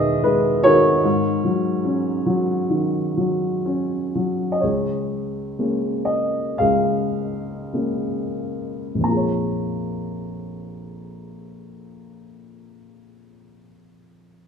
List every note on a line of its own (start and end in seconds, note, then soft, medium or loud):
0.00 1.00 E2 medium
0.00 1.00 B2 medium
0.00 0.65 D#3 medium
0.00 0.22 G#3 medium
0.00 1.00 G#4 medium
0.00 0.24 B4 medium
0.00 0.22 D#5 loud
0.00 1.06 E5 loud
0.24 1.02 G#3 medium
0.24 0.65 B4 medium
0.63 1.03 D#3 medium
0.63 4.10 F#4 medium
0.63 4.09 A#4 medium
0.63 4.10 C#5 loud
1.04 4.58 G#2 medium
1.44 2.25 F#3 medium
1.85 3.62 C#4 medium
2.26 3.16 F#3 medium
2.70 4.58 D#3 medium
3.17 4.14 F#3 medium
3.66 4.59 C#4 medium
4.15 4.61 F#3 medium
4.52 4.61 D#5 medium
4.60 6.59 C#2 soft
4.60 6.56 G#4 soft
4.60 6.04 C#5 medium
5.59 6.40 G#3 soft
5.59 6.40 A#3 soft
5.59 6.40 C#4 soft
6.05 6.55 D#5 medium
6.58 9.02 C#2 medium
6.58 9.02 G#4 soft
6.58 8.33 F5 medium
7.73 8.79 G#3 soft
7.73 8.80 A#3 soft
7.73 8.80 C#4 soft
8.94 13.62 A#1 soft
8.99 13.66 F2 soft
9.03 13.71 A#3 soft
9.03 13.71 A#5 soft
9.08 13.75 F4 soft
9.12 13.80 G#4 soft
9.16 13.84 C#5 soft